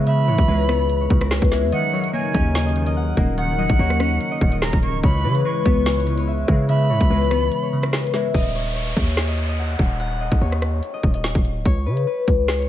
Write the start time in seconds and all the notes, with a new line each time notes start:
Already playing: C#3 E3 G#3 B3 E4 B4 C#5
0.07 C#3 E5 B5, closed hi-hat
0.28 G#2 E3 C#5
0.38 C#2, kick, closed hi-hat
0.48 C#2 G#3 B4
0.69 B3, cross-stick, closed hi-hat
0.90 closed hi-hat
1.01 C#5
1.10 C#2 C#3, kick
1.21 A#4, cross-stick, closed hi-hat
1.31 B4, snare, closed hi-hat
1.38 closed hi-hat
1.42 C#2, kick, closed hi-hat
1.52 G#3 E5, snare, open hi-hat
1.63 E2
1.72 D#3 F#3 D#4 A#4 D#5 F#5, closed hi-hat
1.93 F#3 C#5
2.04 closed hi-hat
2.13 A#3 C#5 G#5
2.34 D#2 C#4, kick, closed hi-hat
2.55 snare, closed hi-hat
2.62 closed hi-hat
2.66 D#5, closed hi-hat
2.76 D#3, closed hi-hat
2.86 D#5, closed hi-hat
2.96 F#5
3.17 D#1 A#3, kick, closed hi-hat
3.38 D#3 F#5, closed hi-hat
3.58 F#3 D#5
3.69 A#1, kick, closed hi-hat
3.79 D#2 A#3 C#5
3.90 cross-stick
4.00 C#4, cross-stick, closed hi-hat
4.21 closed hi-hat
4.31 D#5
4.41 D#1 D#3, kick
4.52 D#5, closed hi-hat
4.62 A#5, snare, closed hi-hat
4.73 D#1, kick
4.83 A#3 C#6, closed hi-hat
4.94 C#1
5.03 C#2 C#3 G#3 E4 B4 C#5 B5, kick, closed hi-hat
5.24 C#3 E3 B4
5.35 closed hi-hat
5.45 G#3 B4 C#6
5.65 C#2 B3, kick, closed hi-hat
5.86 snare, closed hi-hat
5.93 closed hi-hat
5.97 C#5, closed hi-hat
6.06 C#3, closed hi-hat
6.18 C#5, closed hi-hat
6.27 E5
6.48 C#3 G#3, kick, closed hi-hat
6.69 C#3 E5 B5, closed hi-hat
6.90 G#2 E3 C#5
7.00 C#2, kick, closed hi-hat
7.10 C#2 G#3 B4
7.31 B3, cross-stick, closed hi-hat
7.52 closed hi-hat
7.63 C#5
7.73 C#3
7.83 A#4, cross-stick, closed hi-hat
7.93 B4, snare, closed hi-hat
8.00 closed hi-hat
8.07 closed hi-hat
8.14 G#3 E5, snare, open hi-hat
8.34 D#1 D#5, kick, closed hi-hat, downlifter
8.55 C#5
8.66 closed hi-hat
8.76 C#5
8.97 D#2, kick, closed hi-hat
9.17 snare, closed hi-hat
9.24 closed hi-hat
9.28 D#5, closed hi-hat
9.38 closed hi-hat
9.48 D#5, closed hi-hat
9.59 F#5
9.79 D#1, kick, closed hi-hat
10.00 F#5, closed hi-hat
10.21 D#5
10.31 A#1, kick, closed hi-hat
10.41 D#2 C#5
10.52 cross-stick
10.62 cross-stick, closed hi-hat
10.83 closed hi-hat
10.94 D#5
11.03 D#1, kick
11.14 D#5, closed hi-hat
11.24 snare, closed hi-hat
11.35 D#1, kick
11.45 closed hi-hat
11.56 C#1
11.65 C#2 C#5, kick, closed hi-hat
11.86 C#3 B4
11.97 closed hi-hat
12.07 B4
12.28 C#2, kick, closed hi-hat
12.48 snare, closed hi-hat
12.55 C#5, closed hi-hat
12.62 closed hi-hat